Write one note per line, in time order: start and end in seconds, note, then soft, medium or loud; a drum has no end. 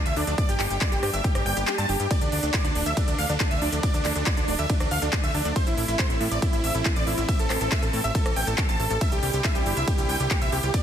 0.00 0.36 F3 medium
0.00 0.36 A3 medium
0.00 0.36 D4 medium
0.05 0.13 D2 medium
0.05 0.15 E5 loud
0.05 0.15 E6 loud
0.05 closed hi-hat medium
0.16 0.24 D2 loud
0.16 0.26 D4 medium
0.16 0.26 D5 medium
0.16 open hi-hat medium
0.27 0.35 D2 medium
0.27 0.36 D4 medium
0.27 0.36 D5 medium
0.27 closed hi-hat medium
0.38 2.09 G3 medium
0.38 2.09 A#3 medium
0.38 2.09 D4 medium
0.38 0.47 D5 loud
0.38 0.47 D6 loud
0.38 kick loud
0.38 closed hi-hat medium
0.49 0.56 G1 medium
0.49 0.58 G4 medium
0.49 0.58 G5 medium
0.49 closed hi-hat medium
0.59 0.67 G1 loud
0.59 0.69 G4 medium
0.59 0.69 G5 medium
0.59 clap medium
0.59 open hi-hat loud
0.70 0.78 G1 medium
0.70 0.80 G4 medium
0.70 0.80 G5 medium
0.70 closed hi-hat medium
0.81 0.90 D5 loud
0.81 0.90 D6 loud
0.81 kick loud
0.81 clap loud
0.81 closed hi-hat medium
0.92 1.00 G1 medium
0.92 1.01 G4 medium
0.92 1.01 G5 medium
0.92 closed hi-hat medium
1.03 1.10 G2 loud
1.03 1.12 G4 medium
1.03 1.12 G5 medium
1.03 cross-stick medium
1.03 open hi-hat medium
1.13 1.21 G1 medium
1.13 1.23 E5 medium
1.13 1.23 E6 loud
1.13 closed hi-hat medium
1.24 1.33 G4 medium
1.24 1.33 G5 medium
1.24 kick loud
1.24 closed hi-hat medium
1.35 1.43 G1 medium
1.35 1.44 G4 medium
1.35 1.44 G5 medium
1.35 cross-stick medium
1.35 closed hi-hat medium
1.46 1.53 G1 loud
1.46 1.55 G5 medium
1.46 1.55 G6 medium
1.46 open hi-hat loud
1.57 1.64 G1 medium
1.57 1.66 G4 medium
1.57 1.66 G5 medium
1.57 closed hi-hat medium
1.67 1.77 G4 medium
1.67 1.77 G5 medium
1.67 clap loud
1.67 closed hi-hat medium
1.78 1.86 G2 medium
1.78 1.87 A5 loud
1.78 1.87 A6 medium
1.78 closed hi-hat medium
1.89 1.97 G1 loud
1.89 1.98 G4 medium
1.89 1.98 G5 medium
1.89 open hi-hat medium
2.00 2.07 G2 loud
2.00 2.09 G4 medium
2.00 2.09 G5 medium
2.00 closed hi-hat medium
2.11 5.53 F3 medium
2.11 8.97 A3 medium
2.11 5.52 D4 medium
2.11 2.20 D5 loud
2.11 2.20 D6 loud
2.11 kick loud
2.11 closed hi-hat medium
2.11 ride medium
2.21 2.29 D2 medium
2.21 2.31 D4 medium
2.21 2.31 D5 medium
2.21 closed hi-hat medium
2.32 2.40 D2 loud
2.32 2.41 D4 medium
2.32 2.41 D5 medium
2.32 open hi-hat loud
2.43 2.51 D2 medium
2.43 2.52 D4 medium
2.43 2.52 D5 medium
2.43 closed hi-hat medium
2.54 2.63 D5 loud
2.54 2.63 D6 loud
2.54 kick loud
2.54 clap loud
2.54 closed hi-hat medium
2.54 ride medium
2.65 2.72 D2 medium
2.65 2.74 D4 medium
2.65 2.74 D5 medium
2.65 closed hi-hat medium
2.75 2.83 D1 loud
2.75 2.85 D4 medium
2.75 2.85 D5 medium
2.75 open hi-hat medium
2.86 2.94 D2 medium
2.86 2.95 E5 medium
2.86 2.95 E6 loud
2.86 closed hi-hat medium
2.97 3.06 D4 medium
2.97 3.06 D5 medium
2.97 kick loud
2.97 closed hi-hat medium
2.97 ride medium
3.08 3.15 D2 medium
3.08 3.17 D4 medium
3.08 3.17 D5 medium
3.08 closed hi-hat medium
3.19 3.26 D2 loud
3.19 3.28 F5 medium
3.19 3.28 F6 loud
3.19 open hi-hat loud
3.29 3.37 D2 medium
3.29 3.39 D4 medium
3.29 3.39 D5 medium
3.29 closed hi-hat medium
3.40 3.49 D4 medium
3.40 3.49 D5 medium
3.40 kick loud
3.40 clap loud
3.40 closed hi-hat medium
3.40 ride medium
3.51 3.58 D2 medium
3.51 3.60 E5 loud
3.51 3.60 E6 medium
3.51 closed hi-hat medium
3.62 3.69 D2 loud
3.62 3.71 D4 medium
3.62 3.71 D5 medium
3.62 open hi-hat medium
3.72 3.80 D2 medium
3.72 3.82 D4 medium
3.72 3.82 D5 medium
3.72 closed hi-hat medium
3.83 3.93 D5 loud
3.83 3.92 D6 loud
3.83 kick loud
3.83 closed hi-hat medium
3.83 ride medium
3.94 4.02 D2 medium
3.94 4.03 D4 medium
3.94 4.03 D5 medium
3.94 closed hi-hat medium
4.05 4.12 D2 loud
4.05 4.14 D4 medium
4.05 4.14 D5 medium
4.05 clap medium
4.05 open hi-hat loud
4.16 4.23 D2 medium
4.16 4.25 D4 medium
4.16 4.25 D5 medium
4.16 closed hi-hat medium
4.26 4.36 D5 loud
4.26 4.36 D6 loud
4.26 kick loud
4.26 clap loud
4.26 closed hi-hat medium
4.26 ride medium
4.37 4.45 D2 medium
4.37 4.46 D4 medium
4.37 4.46 D5 medium
4.37 closed hi-hat medium
4.48 4.56 D1 loud
4.48 4.57 D4 medium
4.48 4.57 D5 medium
4.48 open hi-hat loud
4.59 4.66 D2 medium
4.59 4.68 E5 medium
4.59 4.68 E6 loud
4.59 closed hi-hat medium
4.70 4.79 D4 medium
4.70 4.79 D5 medium
4.70 kick loud
4.70 closed hi-hat medium
4.70 ride medium
4.80 4.88 D2 medium
4.80 4.90 D4 medium
4.80 4.90 D5 medium
4.80 cross-stick medium
4.80 closed hi-hat medium
4.91 4.99 D2 loud
4.91 5.00 F5 medium
4.91 5.00 F6 medium
4.91 open hi-hat loud
5.02 5.10 D2 medium
5.02 5.11 D4 medium
5.02 5.11 D5 medium
5.02 closed hi-hat medium
5.13 5.22 D4 medium
5.13 5.22 D5 medium
5.13 kick loud
5.13 clap loud
5.13 closed hi-hat medium
5.13 ride medium
5.24 5.31 D2 medium
5.24 5.33 E5 loud
5.24 5.33 E6 loud
5.24 closed hi-hat medium
5.34 5.42 D2 loud
5.34 5.44 D4 medium
5.34 5.44 D5 medium
5.34 open hi-hat medium
5.45 5.53 D2 medium
5.45 5.54 D4 medium
5.45 5.54 D5 medium
5.45 closed hi-hat medium
5.56 8.98 E3 medium
5.56 8.98 C4 medium
5.56 5.65 C5 loud
5.56 5.65 C6 loud
5.56 kick loud
5.56 closed hi-hat medium
5.56 ride medium
5.67 5.74 A1 medium
5.67 5.76 E4 medium
5.67 5.76 E5 medium
5.67 closed hi-hat medium
5.77 5.85 A1 loud
5.77 5.87 E4 medium
5.77 5.87 E5 medium
5.77 open hi-hat loud
5.88 5.96 A1 medium
5.88 5.97 E4 medium
5.88 5.98 E5 medium
5.88 closed hi-hat medium
5.99 6.08 C5 loud
5.99 6.08 C6 loud
5.99 kick loud
5.99 clap loud
5.99 closed hi-hat medium
5.99 ride medium
6.10 6.17 A1 medium
6.10 6.19 E4 medium
6.10 6.19 E5 medium
6.10 closed hi-hat medium
6.21 6.28 A2 loud
6.21 6.30 E4 medium
6.21 6.30 E5 medium
6.21 open hi-hat loud
6.31 6.39 A1 loud
6.31 6.41 D5 medium
6.31 6.41 D6 loud
6.31 closed hi-hat medium
6.42 6.51 E4 medium
6.42 6.52 E5 medium
6.42 kick loud
6.42 closed hi-hat medium
6.42 ride medium
6.53 6.61 A1 medium
6.53 6.62 E4 medium
6.53 6.62 E5 medium
6.53 closed hi-hat medium
6.64 6.71 A1 loud
6.64 6.73 E5 medium
6.64 6.73 E6 medium
6.64 open hi-hat loud
6.75 6.82 A1 medium
6.75 6.84 E4 medium
6.75 6.84 E5 medium
6.75 closed hi-hat medium
6.85 6.95 E4 medium
6.85 6.95 E5 medium
6.85 kick loud
6.85 clap loud
6.85 closed hi-hat medium
6.85 ride medium
6.96 7.04 A1 medium
6.96 7.05 D5 medium
6.96 7.05 D6 medium
6.96 closed hi-hat medium
7.07 7.15 A1 loud
7.07 7.16 E4 medium
7.07 7.16 E5 medium
7.07 open hi-hat loud
7.18 7.25 A1 medium
7.18 7.27 E4 medium
7.18 7.27 E5 medium
7.18 closed hi-hat medium
7.29 7.38 E5 loud
7.29 7.38 E6 loud
7.29 kick loud
7.29 closed hi-hat medium
7.29 ride medium
7.39 7.47 A1 medium
7.39 7.49 A4 medium
7.39 7.49 A5 medium
7.39 closed hi-hat medium
7.50 7.58 A1 loud
7.50 7.59 A4 medium
7.50 7.59 A5 medium
7.50 cross-stick medium
7.50 clap medium
7.50 open hi-hat loud
7.61 7.69 A1 medium
7.61 7.70 A4 medium
7.61 7.70 A5 medium
7.61 closed hi-hat medium
7.72 7.81 E5 loud
7.72 7.81 E6 loud
7.72 kick loud
7.72 clap loud
7.72 closed hi-hat medium
7.72 ride medium
7.83 7.90 A1 medium
7.83 7.92 A4 medium
7.83 7.92 A5 medium
7.83 closed hi-hat medium
7.93 8.01 A2 loud
7.93 8.03 A4 medium
7.93 8.03 A5 medium
7.93 open hi-hat loud
8.04 8.12 A1 medium
8.04 8.13 E5 medium
8.04 8.13 E6 loud
8.04 closed hi-hat medium
8.15 8.24 A4 medium
8.15 8.24 A5 medium
8.15 kick loud
8.15 closed hi-hat medium
8.15 ride medium
8.26 8.33 A1 medium
8.26 8.35 A4 medium
8.26 8.35 A5 medium
8.26 cross-stick medium
8.26 closed hi-hat medium
8.36 8.44 A1 loud
8.36 8.46 G5 medium
8.36 8.46 G6 medium
8.36 open hi-hat loud
8.47 8.55 A1 medium
8.47 8.56 A4 medium
8.47 8.57 A5 medium
8.47 closed hi-hat medium
8.58 8.67 A4 medium
8.58 8.67 A5 medium
8.58 kick loud
8.58 clap loud
8.58 closed hi-hat medium
8.58 ride medium
8.69 8.76 A1 medium
8.69 8.78 A5 loud
8.69 8.78 A6 medium
8.69 closed hi-hat medium
8.80 8.87 A1 loud
8.80 8.89 A4 medium
8.80 8.89 A5 medium
8.80 open hi-hat medium
8.90 8.98 A1 medium
8.90 9.00 A4 medium
8.90 9.00 A5 medium
8.90 closed hi-hat medium
9.01 10.72 C3 medium
9.01 10.72 G3 medium
9.01 10.83 A#3 medium
9.01 10.72 D4 medium
9.01 10.72 E4 medium
9.01 9.10 E5 loud
9.01 9.10 E6 loud
9.01 kick loud
9.01 closed hi-hat medium
9.01 ride medium
9.12 9.20 C2 medium
9.12 9.21 G4 medium
9.12 9.21 G5 medium
9.12 closed hi-hat medium
9.23 9.30 C2 loud
9.23 9.32 G4 medium
9.23 9.32 G5 medium
9.23 open hi-hat loud
9.34 9.41 C2 medium
9.34 9.43 G4 medium
9.34 9.43 G5 medium
9.34 closed hi-hat medium
9.44 9.54 E5 loud
9.44 9.54 E6 loud
9.44 kick loud
9.44 clap loud
9.44 closed hi-hat medium
9.44 ride medium
9.55 9.63 C2 medium
9.55 9.64 G4 medium
9.55 9.64 G5 medium
9.55 closed hi-hat medium
9.66 9.74 G1 loud
9.66 9.75 G4 medium
9.66 9.75 G5 medium
9.66 open hi-hat medium
9.77 9.84 C2 medium
9.77 9.86 E5 loud
9.77 9.86 E6 medium
9.77 closed hi-hat medium
9.88 9.97 G4 medium
9.88 9.97 G5 medium
9.88 kick loud
9.88 closed hi-hat medium
9.88 ride medium
9.98 10.06 C2 medium
9.98 10.08 G4 medium
9.98 10.08 G5 medium
9.98 closed hi-hat medium
10.09 10.17 C2 loud
10.09 10.18 G5 loud
10.09 10.18 G6 medium
10.09 open hi-hat loud
10.20 10.28 C2 medium
10.20 10.29 G4 medium
10.20 10.29 G5 medium
10.20 closed hi-hat medium
10.31 10.40 G4 medium
10.31 10.40 G5 medium
10.31 kick loud
10.31 clap loud
10.31 closed hi-hat medium
10.31 ride medium
10.42 10.49 C2 medium
10.42 10.51 E5 medium
10.42 10.51 E6 medium
10.42 closed hi-hat medium
10.52 10.60 C2 loud
10.52 10.62 G4 medium
10.52 10.62 G5 medium
10.52 open hi-hat medium
10.63 10.71 C2 medium
10.63 10.72 G4 medium
10.63 10.72 G5 medium
10.63 closed hi-hat medium
10.74 10.83 D3 medium
10.74 10.83 C4 medium
10.74 10.83 D5 loud
10.74 10.83 D6 loud
10.74 kick loud
10.74 closed hi-hat medium
10.74 ride medium